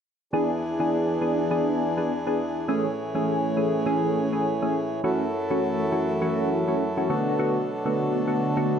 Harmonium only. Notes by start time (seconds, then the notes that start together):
0.33 E2 E3 D4 G#4
2.68 A2 E3 C#4
5.04 F#2 F#3 E4 A4
7.10 B2 D4